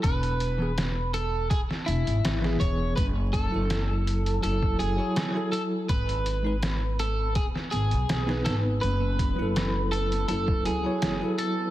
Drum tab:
HH |xxx-x-x-x-xxx-x-|x-x-x-xxx-x-x-x-|xxx-x-x-x-xxx-x-|x-x-x-xxx-x-x-x-|
SD |----o----o--oo--|----o-------o---|----o----o--ooo-|----o-------o---|
BD |o-------o-----o-|o-o------o------|o-------o-------|--o------o------|